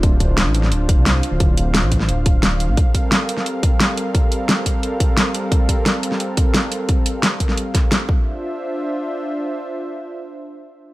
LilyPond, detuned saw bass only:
\new Staff \with { instrumentName = "Detuned saw bass" } { \clef bass \time 4/4 \key d \minor \tempo 4 = 175 d,,8 d,,8. a,,8. d,,8. c,8. r16 d,,16~ | d,,8 d,,8. a,,8. d,,8. d,,4 a,,16 | r1 | r1 |
r1 | r1 | r1 | r1 | }